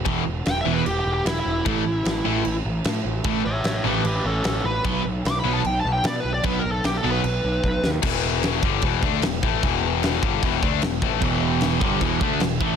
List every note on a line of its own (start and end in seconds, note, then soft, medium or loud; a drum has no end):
0.05 0.21 E1 medium
0.05 0.21 E2 medium
0.05 0.22 B2 medium
0.05 0.22 E3 loud
0.05 kick loud
0.05 crash medium
0.27 0.41 E1 medium
0.46 0.61 E1 medium
0.46 0.59 G5 loud
0.46 snare loud
0.46 crash medium
0.61 0.73 E5 medium
0.65 0.81 E1 medium
0.65 0.81 E2 medium
0.65 0.82 B2 medium
0.65 0.82 E3 medium
0.73 0.86 B4 medium
0.86 1.01 E1 medium
0.86 0.98 G4 medium
0.86 crash medium
1.00 1.12 G4 loud
1.05 1.20 E1 medium
1.14 1.26 G4 medium
1.25 1.40 E1 medium
1.25 1.39 E4 medium
1.25 snare loud
1.25 crash medium
1.40 2.56 E4 medium
1.46 1.60 E1 medium
1.65 1.81 A1 medium
1.65 1.81 A2 medium
1.65 1.82 E3 medium
1.65 1.82 A3 loud
1.65 kick loud
1.65 crash medium
1.85 2.00 A1 medium
2.05 2.20 A1 medium
2.05 snare loud
2.05 crash medium
2.25 2.40 A1 medium
2.25 2.41 A2 medium
2.25 2.42 E3 medium
2.25 2.42 A3 medium
2.45 2.60 A1 medium
2.45 crash medium
2.65 2.80 A1 medium
2.84 3.00 A2 medium
2.84 snare loud
2.84 crash medium
3.05 3.20 A1 medium
3.24 3.40 A1 medium
3.24 3.41 A2 medium
3.24 3.41 E3 loud
3.24 3.42 A3 medium
3.24 kick loud
3.24 crash medium
3.45 3.60 A1 medium
3.45 3.65 C#5 medium
3.45 3.65 E5 loud
3.64 3.79 A1 loud
3.64 3.84 C#5 medium
3.64 3.85 E5 medium
3.64 snare medium
3.64 crash medium
3.84 3.99 A1 medium
3.84 4.01 A2 medium
3.84 4.01 E3 loud
3.84 4.01 A3 loud
3.84 4.04 G4 medium
3.84 4.05 B4 medium
4.04 4.19 A1 loud
4.04 4.24 G4 medium
4.04 4.25 B4 medium
4.04 crash medium
4.25 4.39 A1 medium
4.25 4.44 C#4 medium
4.25 4.44 A4 loud
4.44 4.59 A1 medium
4.44 4.64 C#4 medium
4.44 4.65 A4 loud
4.44 snare loud
4.44 crash medium
4.64 4.79 A1 medium
4.64 5.04 B4 loud
4.84 4.99 B1 loud
4.84 5.01 B2 loud
4.84 5.01 F#3 loud
4.84 5.01 B3 loud
4.84 kick loud
4.84 crash medium
5.05 5.19 B1 medium
5.25 5.40 B1 loud
5.25 5.39 D6 loud
5.25 snare medium
5.25 crash medium
5.40 5.52 B5 medium
5.44 5.59 B1 medium
5.44 5.60 B2 medium
5.44 5.61 F#3 medium
5.44 5.61 B3 loud
5.53 5.66 A5 medium
5.64 5.79 B1 loud
5.64 5.78 G5 loud
5.64 crash medium
5.80 5.92 A5 loud
5.85 5.99 B1 loud
5.93 6.05 G5 loud
6.04 6.19 B2 loud
6.04 6.20 D5 medium
6.04 snare loud
6.04 crash medium
6.20 6.32 B4 medium
6.24 6.39 B1 medium
6.34 6.45 D5 medium
6.43 6.59 B1 loud
6.43 6.60 B2 loud
6.43 6.61 F#3 medium
6.43 6.61 B3 loud
6.43 6.58 B4 loud
6.43 kick loud
6.43 crash medium
6.59 6.71 A#4 medium
6.65 6.79 B1 medium
6.72 6.84 A4 loud
6.84 6.98 B1 loud
6.84 6.97 G4 loud
6.84 snare loud
6.84 crash medium
6.97 7.10 A4 loud
7.04 7.19 B1 medium
7.04 7.20 B2 loud
7.04 7.21 F#3 loud
7.04 7.21 B3 loud
7.12 7.88 B4 loud
7.24 7.38 B1 loud
7.24 crash medium
7.44 7.59 B1 medium
7.64 7.78 B1 loud
7.64 kick medium
7.83 7.98 D#2 medium
7.83 snare medium
8.02 8.59 E1 medium
8.02 8.62 E2 loud
8.02 8.63 B2 loud
8.02 8.63 E3 loud
8.02 kick loud
8.02 crash loud
8.02 crash medium
8.43 snare loud
8.43 crash medium
8.63 8.82 G1 loud
8.63 8.82 G2 medium
8.63 8.83 D3 loud
8.63 8.83 G3 loud
8.63 kick loud
8.82 9.01 E1 loud
8.82 9.02 E2 loud
8.82 9.03 B2 loud
8.82 9.03 E3 loud
8.82 kick loud
8.82 crash medium
9.03 9.21 D2 medium
9.03 9.22 D3 loud
9.03 9.23 A3 loud
9.03 9.23 D4 loud
9.03 kick loud
9.22 9.42 E1 medium
9.22 9.39 E2 medium
9.22 9.40 B2 medium
9.22 snare loud
9.22 crash medium
9.43 9.61 A1 medium
9.43 9.62 A2 loud
9.43 9.63 E3 loud
9.43 9.63 A3 loud
9.43 kick loud
9.63 10.19 E1 loud
9.63 10.22 E2 loud
9.63 10.22 B2 loud
9.63 10.22 E3 loud
9.63 kick loud
9.63 crash medium
10.03 snare loud
10.03 crash medium
10.23 10.41 G1 loud
10.23 10.42 G2 loud
10.23 10.42 D3 medium
10.23 10.42 G3 loud
10.23 kick loud
10.43 10.61 E1 medium
10.43 10.62 E2 loud
10.43 10.62 B2 loud
10.43 10.63 E3 loud
10.43 kick loud
10.43 crash medium
10.62 10.81 D2 loud
10.62 10.81 D3 loud
10.62 10.82 A3 loud
10.62 10.82 D4 loud
10.62 kick loud
10.82 11.01 E1 medium
10.82 10.98 E2 medium
10.82 10.99 B2 medium
10.82 snare loud
10.82 crash medium
11.02 11.21 A1 loud
11.02 11.21 A2 loud
11.02 11.22 E3 loud
11.02 11.22 A3 loud
11.02 kick loud
11.21 11.77 E1 loud
11.21 11.81 E2 loud
11.21 11.82 B2 loud
11.21 11.82 E3 loud
11.21 kick loud
11.21 crash medium
11.61 snare loud
11.61 crash medium
11.81 12.00 G1 loud
11.81 12.01 G2 medium
11.81 12.01 D3 loud
11.81 12.01 G3 loud
11.81 kick loud
12.01 12.20 E1 medium
12.01 12.21 E2 loud
12.01 12.21 B2 loud
12.01 12.21 E3 loud
12.01 kick loud
12.01 crash medium
12.21 12.39 D2 loud
12.21 12.40 D3 loud
12.21 12.41 A3 loud
12.21 12.41 D4 loud
12.21 kick loud
12.40 12.59 E1 medium
12.40 12.57 E2 medium
12.40 12.57 B2 medium
12.40 snare loud
12.40 crash medium
12.61 12.76 A1 loud
12.61 12.76 A2 loud
12.61 12.76 E3 loud
12.61 12.76 A3 loud
12.61 kick loud